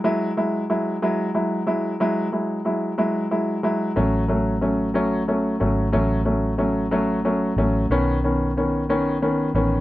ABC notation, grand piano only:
X:1
M:6/8
L:1/8
Q:3/8=61
K:E
V:1 name="Grand piano"
[F,G,E] [F,G,E] [F,G,E] [F,G,E] [F,G,E] [F,G,E] | [F,G,E] [F,G,E] [F,G,E] [F,G,E] [F,G,E] [F,G,E] | [F,A,C] [F,A,C] [F,A,C] [F,A,C] [F,A,C] [F,A,C] | [F,A,C] [F,A,C] [F,A,C] [F,A,C] [F,A,C] [F,A,C] |
[D,B,C] [D,B,C] [D,B,C] [D,B,C] [D,B,C] [D,B,C] |]